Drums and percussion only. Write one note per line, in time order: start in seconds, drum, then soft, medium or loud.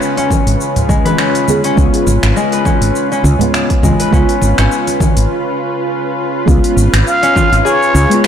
0.02 shaker soft
0.17 open hi-hat soft
0.17 muted conga soft
0.17 shaker soft
0.30 kick medium
0.30 low conga medium
0.30 shaker medium
0.47 open hi-hat medium
0.47 shaker soft
0.61 shaker soft
0.76 open hi-hat soft
0.76 low conga medium
0.76 shaker soft
0.89 kick loud
0.89 high conga medium
0.89 low conga medium
0.89 shaker medium
1.06 open hi-hat medium
1.06 low conga medium
1.06 shaker soft
1.18 finger snap medium
1.18 shaker soft
1.35 open hi-hat soft
1.35 shaker soft
1.48 high conga medium
1.48 shaker medium
1.64 open hi-hat medium
1.64 shaker soft
1.77 kick loud
1.77 shaker soft
1.94 open hi-hat soft
1.94 shaker soft
2.07 muted conga medium
2.07 shaker medium
2.23 finger snap medium
2.23 open hi-hat medium
2.23 shaker soft
2.37 shaker soft
2.52 open hi-hat soft
2.52 shaker soft
2.65 kick medium
2.65 low conga medium
2.65 shaker medium
2.82 open hi-hat medium
2.82 shaker soft
2.96 shaker soft
3.12 shaker soft
3.24 high conga medium
3.24 shaker medium
3.40 open hi-hat medium
3.40 low conga medium
3.40 shaker soft
3.54 finger snap medium
3.54 shaker soft
3.70 kick loud
3.70 open hi-hat soft
3.83 kick medium
3.83 low conga medium
3.83 shaker medium
4.00 open hi-hat medium
4.00 shaker soft
4.13 kick loud
4.13 shaker soft
4.29 open hi-hat soft
4.29 shaker soft
4.42 muted conga medium
4.42 shaker medium
4.58 finger snap medium
4.58 open hi-hat soft
4.58 shaker soft
4.72 shaker soft
4.87 open hi-hat soft
4.87 muted conga soft
4.87 shaker soft
5.00 kick medium
5.00 high conga medium
5.00 low conga medium
5.00 shaker medium
5.17 open hi-hat medium
5.17 shaker soft
6.48 kick loud
6.48 shaker soft
6.64 open hi-hat soft
6.64 shaker soft
6.78 shaker medium
6.94 finger snap medium
6.94 open hi-hat medium
6.94 shaker soft
7.07 shaker soft
7.23 open hi-hat soft
7.23 shaker soft
7.36 kick loud
7.36 low conga medium
7.36 shaker medium
7.53 open hi-hat medium
7.53 shaker soft
7.66 shaker soft
7.83 shaker soft
7.95 shaker medium
8.11 open hi-hat medium
8.11 shaker soft
8.24 finger snap medium